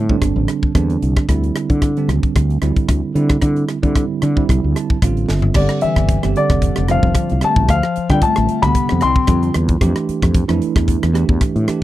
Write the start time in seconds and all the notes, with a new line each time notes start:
Already playing: A2
0.09 D3 G3 C4 D4, kick
0.22 G1, kick, cross-stick, closed hi-hat
0.36 A1
0.48 cross-stick, closed hi-hat
0.63 muted fretless electric bass stroke, kick
0.75 E2 D3 G3 C4 D4, kick, cross-stick, closed hi-hat
0.90 closed hi-hat
1.02 C2, closed hi-hat
1.17 kick, cross-stick
1.29 D2 D3 G3 C4 E4, kick, cross-stick, closed hi-hat
1.43 closed hi-hat
1.56 cross-stick, closed hi-hat
1.70 D3, kick, closed hi-hat
1.82 kick, cross-stick, closed hi-hat
1.97 D3 G3 C4 D4, closed hi-hat
2.08 D2, cross-stick, closed hi-hat
2.23 muted fretless electric bass stroke, kick, closed hi-hat
2.36 D2, kick, cross-stick, closed hi-hat
2.50 closed hi-hat
2.62 D2 D3 G3 C4 E4, cross-stick, closed hi-hat
2.76 kick, closed hi-hat
2.89 D2, kick, cross-stick, closed hi-hat
3.15 D3 G3 C4 E4, closed hi-hat
3.30 kick, cross-stick, closed hi-hat
3.42 D3, kick, cross-stick, closed hi-hat
3.56 closed hi-hat
3.69 cross-stick, closed hi-hat
3.83 D3 G3 C4 E4, kick, closed hi-hat
3.96 kick, cross-stick, closed hi-hat
4.22 D3, cross-stick, closed hi-hat
4.36 D3 G3 C4 E4, kick
4.49 C2, kick, cross-stick, closed hi-hat
4.64 D2
4.76 A5, cross-stick, closed hi-hat
4.90 muted fretless electric bass stroke, kick
5.02 A1 D3 G3 C4 F4 F5, kick, cross-stick, closed hi-hat
5.17 closed hi-hat
5.29 G1 E5, snare
5.42 floor tom
5.54 G1 D3 G3 C4 G4 D5, kick, cross-stick, crash
5.69 cross-stick, closed hi-hat
5.81 E3 E5, muted fretless electric bass stroke, closed hi-hat
5.96 G1, kick, cross-stick, closed hi-hat
6.09 kick, closed hi-hat
6.22 G1 D3 G3 C4 G4, cross-stick, closed hi-hat
6.36 D3 D5, closed hi-hat
6.50 F1, kick, cross-stick, closed hi-hat
6.62 kick, closed hi-hat
6.76 F1, cross-stick, closed hi-hat
6.88 D3 F3 G3 C4 F4 F5, cross-stick, closed hi-hat
7.03 F1, kick
7.15 kick, cross-stick, closed hi-hat
7.29 C2, closed hi-hat
7.41 D3 G3 C4 G4 A5, cross-stick, closed hi-hat
7.46 A3
7.56 A1, kick
7.69 D2 F3 F5, kick, cross-stick, closed hi-hat
7.83 cross-stick
7.96 muted fretless electric bass stroke, closed hi-hat
8.10 D3 G3 C4 F4 G5, kick, cross-stick
8.22 A5, muted fretless electric bass stroke, kick, closed hi-hat
8.26 A3
8.36 A1, cross-stick, closed hi-hat
8.49 closed hi-hat
8.62 D2 C3 D3 G3 B3 G4 B5, kick, cross-stick, closed hi-hat
8.75 kick, closed hi-hat
8.89 F2, cross-stick
9.01 C2 C4 C6, cross-stick, closed hi-hat
9.16 kick
9.27 F2 D3 G3 C4 F4, kick, cross-stick, closed hi-hat
9.43 closed hi-hat
9.54 E2, cross-stick, closed hi-hat
9.68 kick, closed hi-hat
9.81 F2 E3 A3 D4 G4, kick, cross-stick, closed hi-hat
9.96 cross-stick, closed hi-hat
10.09 muted fretless electric bass stroke, closed hi-hat
10.22 F2, kick, cross-stick, closed hi-hat
10.35 kick, closed hi-hat
10.48 F2 E3 A3 D4 E4, cross-stick, closed hi-hat
10.62 closed hi-hat
10.76 E2, kick, cross-stick, closed hi-hat
10.88 kick, closed hi-hat
11.03 E2, cross-stick, closed hi-hat
11.13 E3 A3 D4 G4, cross-stick, closed hi-hat
11.29 E2, kick
11.41 kick, cross-stick, closed hi-hat
11.56 A2, closed hi-hat
11.67 E3 A3 D4 G4, muted fretless electric bass stroke, cross-stick, closed hi-hat